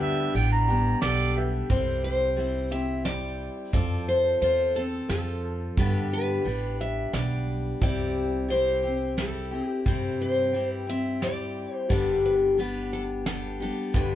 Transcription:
Already playing: D2 G2 D3 G3 B3 D4 G4 B4 D5
0.02 E5
0.34 A1 G3 B3 D4 G4 G5, closed hi-hat
0.52 A#5
0.68 G3 B3 D4 G4
1.01 B1 G3 B3 D4 G4 A4 D5, snare, closed hi-hat
1.36 G4 B4 E5
1.70 C2 C3 G3 C4 E4 G4 C5, kick, closed hi-hat
2.04 C5
2.36 G3 C4 E4 G4, closed hi-hat
2.71 C4 E4 G4 E5
3.05 G3 C4 E4 G4 D5, snare, closed hi-hat
3.72 F2 F3 C4 F4 A4 D5, kick, closed hi-hat
4.08 C5
4.41 E2 C4 F4 A4 C5, closed hi-hat
4.75 C4 F4 A4
5.09 F2 F3 C4 F4 A4, snare, closed hi-hat
5.77 G2 D3 G3 B3 D4 G4 B4, kick, closed hi-hat
6.13 B4
6.44 A1 G3 B3 D4 G4, closed hi-hat
6.81 E5
7.13 B1 G3 B3 D4 G4 D5, snare, closed hi-hat
7.81 C2 C3 G3 C4 E4 G4 D5, kick, closed hi-hat
8.48 G3 C4 E4 G4 C5, closed hi-hat
8.83 C4 E4 G4
9.17 G3 C4 E4 G4 A4, snare, closed hi-hat
9.51 C4 E4 G4
9.67 G4
9.86 G2 C3 G3 C4 E4 G4 C5, kick, closed hi-hat
10.21 C5
10.53 G3 C4 E4 G4, closed hi-hat
10.70 B4
10.87 C4 E4 G4 E5
11.20 G3 C4 E4 G4 D5, snare, closed hi-hat
11.75 C5
11.89 G1 G2 D3 G3 B3 D4 G4 D5, kick, closed hi-hat
12.25 B4
12.58 G3 B3 D4 G4 B4, closed hi-hat
12.93 A4
13.26 G3 B3 D4 G4 A4, snare, closed hi-hat
13.60 G3 B3 D4 G4 A4
13.94 D2 G2 D3 G3 B3 D4 G4 B4, kick, closed hi-hat

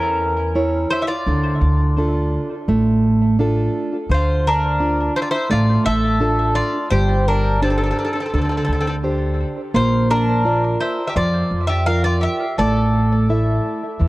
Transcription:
Already playing: E2 E3 C#4 A#4
0.55 E4 C#5
0.90 E4 C5
1.01 G4 E5
1.07 F4 D5
1.26 D2 D3
1.61 D2
1.98 D4 F4 A4
2.68 A1 A3
3.39 D4 F4 A4
4.09 D2 D3 C5
4.14 F4
4.47 D4 A#4
4.80 D4 F4
5.16 E4 C5
5.22 F4 D5
5.31 E4 C5
5.50 A1 A3 F4 D5
5.86 A1 A4 E5
6.20 D4 F4 A4
6.55 F4 D5
6.91 G1 G3 G4 C5
7.28 D4 A#4
7.62 C4 D4 G4 A4 C5
7.70 C4 A4
7.78 C4 A4
7.83 C4 A4
7.91 C4 A4
7.99 C4 A4
8.05 C4 A4
8.13 C4 A4
8.20 C4 A4
8.26 C4 A4
8.33 D2 D3 A4
8.38 C4 A4
8.45 C4
8.49 C4 A4
8.57 C4 A4
8.65 D2 C4 A4
8.73 C4 A4
8.80 C4 A4
8.87 C4 A4
9.04 D4 G4 C5
9.74 A#1 A#3 F4 C5
10.10 D4 A#4
10.45 F4 A#4 D5
10.80 E4 C5
11.07 G4 E5
11.16 F2 F3 F4 D5
11.51 F2
11.67 G4 E5
11.86 F4 A#4 D5 F5
12.04 F4 D5
12.21 G4 E5
12.58 A1 A3 A4 D5
13.29 E4 A4 E5
13.99 E2 E3

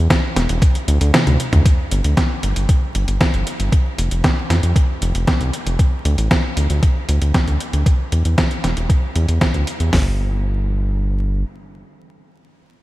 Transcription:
0.10 kick, snare, closed hi-hat
0.36 E1, snare, closed hi-hat
0.49 E1, closed hi-hat
0.62 kick, closed hi-hat
0.75 closed hi-hat
0.88 D2, closed hi-hat
1.01 D2, closed hi-hat
1.14 snare, closed hi-hat, high tom
1.27 D2, closed hi-hat, high tom
1.40 closed hi-hat
1.53 D2, closed hi-hat, mid tom
1.65 kick, closed hi-hat
1.91 G1, closed hi-hat
2.04 D2, closed hi-hat
2.17 kick, snare, closed hi-hat
2.43 G1, closed hi-hat
2.56 G1, closed hi-hat
2.69 kick, closed hi-hat
2.95 G1, closed hi-hat
3.08 G1, closed hi-hat
3.21 kick, snare, closed hi-hat
3.34 G1, closed hi-hat
3.47 closed hi-hat
3.60 G1, closed hi-hat
3.72 kick, closed hi-hat
3.98 F1, closed hi-hat
4.11 F1, closed hi-hat
4.24 kick, snare, closed hi-hat
4.50 F2, snare, closed hi-hat
4.63 F2, closed hi-hat
4.76 kick, closed hi-hat
5.02 F1, closed hi-hat
5.14 F1, closed hi-hat
5.27 kick, snare, closed hi-hat
5.40 C2, closed hi-hat
5.54 closed hi-hat
5.66 F1, closed hi-hat
5.79 kick, closed hi-hat
6.05 D2, closed hi-hat
6.18 A1, closed hi-hat
6.31 kick, snare, closed hi-hat
6.57 D2, closed hi-hat
6.70 D2, closed hi-hat
6.83 kick, closed hi-hat
7.09 D2, closed hi-hat
7.22 D2, closed hi-hat
7.34 kick, snare, closed hi-hat
7.47 D2, closed hi-hat
7.61 closed hi-hat
7.73 D2, closed hi-hat
7.86 kick, closed hi-hat
8.12 E2, closed hi-hat
8.25 E2, closed hi-hat
8.38 kick, snare, closed hi-hat
8.51 closed hi-hat
8.64 E1, snare, closed hi-hat
8.77 E1, closed hi-hat
8.90 kick, closed hi-hat
9.16 E2, closed hi-hat
9.28 E2, closed hi-hat
9.41 kick, snare, closed hi-hat
9.54 D2, closed hi-hat
9.67 closed hi-hat
9.80 E2, closed hi-hat
9.93 G1, kick, snare, open hi-hat

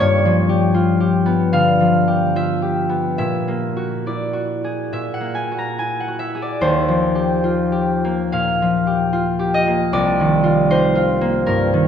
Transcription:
Already playing: F4 D5
0.00 G2 C#5
0.25 F3
0.49 G4
0.74 F4
1.00 G4
1.26 B3
1.53 D3 F5
1.81 F3
2.08 G4
2.36 F4 E5
2.62 G4
2.89 B3
3.18 A#2 E5
3.48 A#3
3.77 F#4
4.06 E4 D5
4.33 F#4
4.64 G#4
4.92 A#2 E5
5.14 F#5
5.20 A#3
5.35 G#5
5.51 F#4
5.58 A#5
5.78 E4 G#5
6.00 F#5
6.08 F#4
6.19 E5
6.35 G#4
6.42 D5
6.61 D#2 C5
6.88 F3
7.15 G4
7.44 F4
7.72 G4
8.05 A#3
8.32 A#2 F5
8.62 F3
8.87 G4
9.13 F4
9.39 G4
9.54 D#5
9.67 A#3
9.93 C2 D5
10.20 D#3
10.44 F4
10.70 D#4 C5
10.95 F4
11.21 A#3
11.46 G2 A#4
11.74 D#3

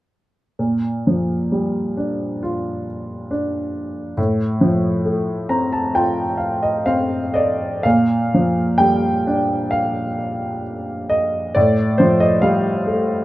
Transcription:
0.59 A#2
1.07 F3
1.52 G3
1.97 D4
2.43 F4
3.31 D4
4.17 A2
4.61 F3
5.05 A3
5.49 C4 A#5
5.73 A5
5.95 F4 G5
6.38 F5
6.63 D#5
6.86 C4 F5
7.34 D5 D#5
7.83 A#2 F5
8.34 F3
8.78 G3 G5
9.27 D4
9.71 F5
11.10 D#5
11.55 A2 D5
11.98 F3 C5
12.20 D#5
12.42 G3 F5
12.87 A3

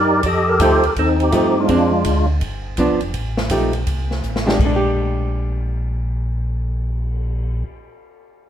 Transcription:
Already playing: F#2 D#4 G4 A#4 D5
0.23 F2 G4 A4 D#5, kick, ride
0.49 A#4
0.60 D2 F3 A3 D#4 G4 C5, kick, hi-hat pedal, ride
0.83 D2 A#4, ride
0.96 D#2 C4 D#4 A4, kick, ride
1.20 G4, ride
1.32 G2 F3 A3 D#4 G4, kick, hi-hat pedal, ride
1.36 G4
1.59 G#3 D4 F4
1.68 F2 G#3 C4 D4, kick, ride
2.05 D2, kick, hi-hat pedal, ride
2.41 G1, kick, ride
2.77 B1 F3 B3 D4, kick, hi-hat pedal, ride
2.90 G1
3.01 F1, ride
3.14 A1, kick, ride
3.37 snare
3.50 A#1 F3 A3 D#4 G4, kick, hi-hat pedal, ride
3.73 ride
3.87 C2, kick, ride
4.11 snare
4.23 A1, hi-hat pedal
4.36 snare
4.46 G#3 D4 G4, snare
4.51 G#3
4.59 A#1, kick, crash
4.65 D4
4.76 G4
4.84 cymbal swell

